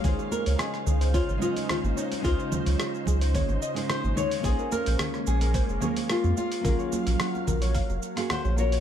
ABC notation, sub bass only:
X:1
M:4/4
L:1/16
Q:1/4=109
K:Db
V:1 name="Sub bass" clef=bass
D,, z2 D,, z2 D,,2 z A,,, z3 A,,, z2 | D,, z2 D,, z2 D,,2 z A,,, z3 A,,, z2 | B,,, z2 B,,, z2 B,,,2 z F,,, z3 F,, z2 | B,,, z2 B,,, z2 B,,,2 z F,,, z3 B,,,2 z |]